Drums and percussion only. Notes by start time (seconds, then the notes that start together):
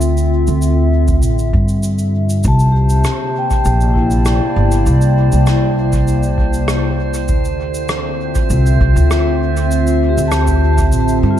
0.01 cabasa
0.17 cabasa
0.47 cabasa
0.62 cabasa
1.08 kick, cabasa
1.22 cabasa
1.39 cabasa
1.53 kick
1.68 cabasa
1.83 cabasa
1.99 cabasa
2.30 cabasa
2.44 kick, cabasa
2.59 cabasa
2.90 cabasa
3.04 cross-stick, cabasa
3.51 kick, cabasa
3.65 cabasa
3.81 cabasa
3.96 kick
4.11 cabasa
4.25 cross-stick, cabasa
4.72 cabasa
4.86 cabasa
5.01 cabasa
5.32 cabasa
5.47 cross-stick, cabasa
5.93 kick, cabasa
6.08 cabasa
6.23 cabasa
6.38 kick
6.53 cabasa
6.68 cross-stick, cabasa
7.14 cabasa
7.28 kick, cabasa
7.45 cabasa
7.74 cabasa
7.89 cross-stick, cabasa
8.35 kick, cabasa
8.50 cabasa
8.66 cabasa
8.81 kick
8.97 cabasa
9.11 cross-stick, cabasa
9.57 cabasa
9.71 cabasa
9.87 cabasa
10.18 cabasa
10.32 cross-stick, cabasa
10.47 kick, cabasa
10.78 kick, cabasa
10.92 cabasa
11.08 cabasa